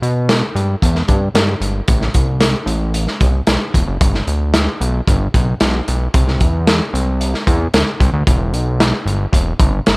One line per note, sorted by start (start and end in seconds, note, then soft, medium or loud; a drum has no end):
0.02 0.43 B2 medium
0.02 closed hi-hat medium
0.29 snare loud
0.29 closed hi-hat medium
0.55 0.76 G2 medium
0.55 closed hi-hat medium
0.82 1.03 E2 loud
0.82 kick medium
0.82 closed hi-hat medium
0.95 snare soft
1.08 1.29 G2 medium
1.08 kick medium
1.08 closed hi-hat medium
1.34 1.55 G2 medium
1.34 snare loud
1.34 closed hi-hat medium
1.60 1.81 G1 medium
1.60 closed hi-hat medium
1.88 2.09 A1 loud
1.88 kick loud
1.88 closed hi-hat medium
2.01 snare soft
2.14 2.55 C2 medium
2.14 kick medium
2.14 closed hi-hat medium
2.41 snare loud
2.41 closed hi-hat medium
2.66 3.07 A1 medium
2.66 closed hi-hat medium
2.94 closed hi-hat medium
3.07 snare soft
3.21 3.41 C2 medium
3.21 kick loud
3.21 closed hi-hat medium
3.47 3.58 B1 medium
3.47 snare loud
3.47 closed hi-hat medium
3.74 3.84 E1 loud
3.74 kick medium
3.74 closed hi-hat medium
3.87 3.98 F#1 medium
4.01 4.21 G1 loud
4.01 kick loud
4.01 closed hi-hat medium
4.14 snare soft
4.27 4.68 D2 medium
4.27 closed hi-hat medium
4.54 snare loud
4.54 closed hi-hat medium
4.81 5.01 B1 loud
4.81 closed hi-hat medium
5.07 5.28 G1 loud
5.07 kick medium
5.07 closed hi-hat medium
5.34 5.54 B1 medium
5.34 kick medium
5.34 closed hi-hat medium
5.60 5.81 B1 medium
5.60 snare loud
5.60 closed hi-hat medium
5.88 6.08 B1 medium
5.88 closed hi-hat medium
6.14 6.42 C2 medium
6.14 kick loud
6.14 closed hi-hat medium
6.28 snare soft
6.40 6.81 E2 medium
6.40 kick medium
6.40 closed hi-hat medium
6.67 snare loud
6.67 closed hi-hat medium
6.94 7.34 C2 medium
6.94 closed hi-hat medium
7.21 closed hi-hat medium
7.34 snare soft
7.47 7.68 E2 medium
7.47 kick loud
7.47 closed hi-hat medium
7.74 7.84 D2 medium
7.74 snare loud
7.74 closed hi-hat medium
8.00 8.10 C2 loud
8.00 kick medium
8.00 closed hi-hat medium
8.13 8.23 D2 medium
8.27 8.53 E1 loud
8.27 kick loud
8.27 closed hi-hat loud
8.52 8.93 B1 medium
8.52 closed hi-hat medium
8.80 snare loud
8.80 closed hi-hat medium
9.06 9.26 G1 medium
9.06 closed hi-hat medium
9.33 9.53 E1 loud
9.33 kick medium
9.33 closed hi-hat medium
9.60 9.80 G1 medium
9.60 kick loud
9.60 closed hi-hat medium
9.86 9.97 G1 medium
9.86 snare loud
9.86 closed hi-hat medium